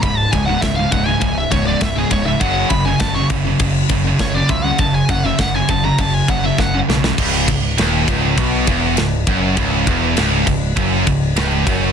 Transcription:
<<
  \new Staff \with { instrumentName = "Lead electric guitar" } { \time 4/4 \key cis \minor \tempo 4 = 101 b''16 a''16 gis''16 fis''16 e''16 eis''16 fis''16 gis''16 gis''16 e''16 cis''16 d''16 e''16 gis'16 cis''16 e''16 | fis''8 b''16 gis''16 a''16 cis'''16 r4. cis''16 d''16 e''16 fis''16 | a''16 gis''16 fis''16 e''16 fis''16 gis''16 a''16 ais''16 a''16 gis''16 fis''16 e''16 fis''8 r8 | r1 |
r1 | }
  \new Staff \with { instrumentName = "Distorted electric guitar" } { \clef bass \time 4/4 \key cis \minor <cis, gis,>8 <cis, gis,>16 <cis, gis,>16 <cis, gis,>16 <cis, gis,>16 <cis, gis,>16 <cis, gis,>16 <cis, gis,>8 <cis, gis,>16 <cis, gis,>16 <cis, gis,>16 <cis, gis,>16 <cis, gis,>16 <cis, gis,>16 | <fis, cis fis>8 <fis, cis>16 <fis, cis>16 <fis, cis>16 <fis, cis>16 <fis, cis>16 <fis, cis>16 <fis, cis>8 <fis, cis>16 <fis, cis>16 <fis, cis>16 <fis, cis>16 <fis, cis>16 <fis, cis>16 | <fis, cis>8 <fis, cis>16 <fis, cis>16 <fis, cis>16 <fis, cis>16 <fis, cis>16 <fis, cis>16 <fis, cis>8 <fis, cis>16 <fis, cis>16 <fis, cis>16 <fis, cis>16 <fis, cis>16 <fis, cis>16 | cis,8 cis,8 dis,8 cis,8 b,8 e,8 cis,8 fis,8 |
cis,8 e,8 cis,8 cis,8 fis,8 cis,8 cis,8 fis,8 | }
  \new Staff \with { instrumentName = "Distorted electric guitar" } { \clef bass \time 4/4 \key cis \minor <cis, gis,>8 <cis, gis,>16 <cis, gis,>16 <cis, gis,>16 <cis, gis,>16 <cis, gis,>16 <cis, gis,>16 <cis, gis,>8 <cis, gis,>16 <cis, gis,>16 <cis, gis,>16 <cis, gis,>16 <cis, gis,>16 <cis, gis,>16 | <fis, cis fis>8 <fis, cis>16 <fis, cis>16 <fis, cis>16 <fis, cis>16 <fis, cis>16 <fis, cis>16 <fis, cis>8 <fis, cis>16 <fis, cis>16 <fis, cis>16 <fis, cis>16 <fis, cis>16 <fis, cis>16 | <fis, cis>8 <fis, cis>16 <fis, cis>16 <fis, cis>16 <fis, cis>16 <fis, cis>16 <fis, cis>16 <fis, cis>8 <fis, cis>16 <fis, cis>16 <fis, cis>16 <fis, cis>16 <fis, cis>16 <fis, cis>16 | cis,8 cis,8 dis,8 cis,8 b,8 e,8 cis,8 fis,8 |
cis,8 e,8 cis,8 cis,8 fis,8 cis,8 cis,8 fis,8 | }
  \new Staff \with { instrumentName = "Picked electric bass" } { \clef bass \time 4/4 \key cis \minor cis,,8 cis,,8 cis,,8 cis,,8 cis,,8 cis,,8 cis,,8 cis,,8 | fis,,8 fis,,8 fis,,8 fis,,8 fis,,8 fis,,8 fis,,8 cis,8 | fis,,8 fis,,8 fis,,8 fis,,8 fis,,8 fis,,8 fis,,8 b,,8 | cis,,8 cis,,8 dis,,8 r8 b,,8 e,,8 cis,,8 fis,,8 |
cis,,8 e,,8 cis,,8 cis,,8 fis,,8 cis,,8 cis,,8 fis,,8 | }
  \new DrumStaff \with { instrumentName = "Drums" } \drummode { \time 4/4 <bd cymr>8 <bd cymr>8 <bd cymr sn>8 <bd cymr>8 <bd cymr>8 <bd cymr>8 <bd cymr sn>8 <bd cymr>8 | <bd cymr>8 <bd cymr>8 <bd cymr sn>8 <bd cymr>8 <bd cymr>8 <bd cymr>8 <bd cymr sn>8 <bd cymr>8 | <bd cymr>8 <bd cymr>8 <bd cymr sn>8 <bd cymr>8 <bd cymr>8 <bd cymr>8 <bd sn>8 sn16 sn16 | <cymc bd>8 <bd cymr>8 <cymr sn>8 <bd cymr>8 <bd cymr>8 <bd cymr>8 <cymr sn>8 <bd cymr>8 |
<bd cymr>8 <bd cymr>8 <cymr sn>8 <bd cymr>8 <bd cymr>8 <bd cymr>8 <cymr sn>8 <bd cymr>8 | }
>>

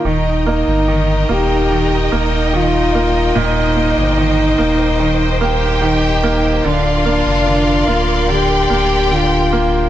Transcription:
<<
  \new Staff \with { instrumentName = "String section" } { \time 4/4 \key ees \major \tempo 4 = 73 << { <ees' g''>1~ | <ees' g''>1 | <bes' c'''>1 | } \\ { bes'1 | c''1 | d''1 | } >> }
  \new Staff \with { instrumentName = "Violin section" } { \time 4/4 \key ees \major <ees' ees''>1~ | <ees' ees''>2~ <ees' ees''>8 <g' g''>4. | <f' f''>2 <g' g''>2 | }
  \new Staff \with { instrumentName = "Trombone" } { \time 4/4 \key ees \major ees'8 ees'4 g'4 r8 f'4 | ees'4 ees'4. r8 ees'4 | d'8 d'4 f'8 g'4 f'4 | }
  \new Staff \with { instrumentName = "Grand piano" } { \clef bass \time 4/4 \key ees \major ees8 bes8 ees8 bes8 ees8 bes8 ees8 bes8 | bes,8 bes8 ees8 bes8 ees8 bes8 ees8 bes8 | d8 bes8 d8 bes8 d8 bes8 d8 bes8 | }
  \new Staff \with { instrumentName = "Sub bass" } { \clef bass \time 4/4 \key ees \major ees,,8. g,,8. ees,,4 ees,,4. | ees,,8. g,,8. ees,,2~ ees,,8 | d,,8. f,,8. d,,4 d,,4. | }
>>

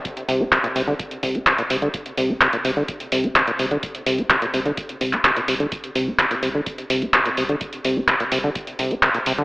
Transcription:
<<
  \new Staff \with { instrumentName = "Acid bass" } { \clef bass \time 4/4 \key d \minor \tempo 4 = 127 r8 c16 ees'16 c16 bes,16 c16 d16 r8 c16 ees'16 c16 bes,16 c16 d16 | r8 c16 ees'16 c16 bes,16 c16 d16 r8 c16 ees'16 c16 bes,16 c16 d16 | r8 c16 ees'16 c16 bes,16 c16 d16 r8 c16 ees'16 c16 bes,16 c16 d16 | r8 c16 ees'16 c16 bes,16 c16 d16 r8 c16 ees'16 c16 bes,16 c16 d16 |
r8 c16 ees'16 c16 bes,16 c16 d16 r8 c16 ees'16 c16 bes,16 c16 d16 | }
  \new Staff \with { instrumentName = "Sub bass" } { \clef bass \time 4/4 \key d \minor r8 c,8 r8 c,8 r8 c,8 r8 c,8 | r8 c,8 r8 c,8 r8 c,8 r8 c,8 | r8 c,8 r8 c,8 r8 c,8 r8 c,8 | r8 c,8 r8 c,8 r8 c,8 r8 c,8 |
r8 c,8 r8 c,8 r8 c,8 r8 c,8 | }
  \new DrumStaff \with { instrumentName = "Drums" } \drummode { \time 4/4 <hh bd>16 hh16 hho8 <hc hh bd>16 hh16 hho8 <hh bd>16 hh16 <hho bd>16 hh16 <hc hh bd>16 hh16 hho16 hh16 | <hh bd>16 hh16 hho8 <hc hh bd>16 hh16 hho8 <hh bd>16 hh16 hho16 hh16 <hc hh bd>16 hh16 hho16 hh16 | <hh bd>16 hh16 hho16 hh16 <hc hh bd>16 hh16 hho16 hh16 <hh bd>16 hh16 <hho bd>16 <hc hh>16 <hc hh bd>16 hh16 hho16 hh16 | <hh bd>16 hh16 hho8 <hc hh bd>16 hh16 hho8 <hh bd>16 hh16 hho16 hh16 <hc hh bd>16 hh16 hho16 hh16 |
<hh bd>16 hh16 hho8 <hc hh bd>16 hh16 hho8 <hh bd>16 hh16 <hho bd>16 hh16 <hc hh bd>16 hh16 hho8 | }
>>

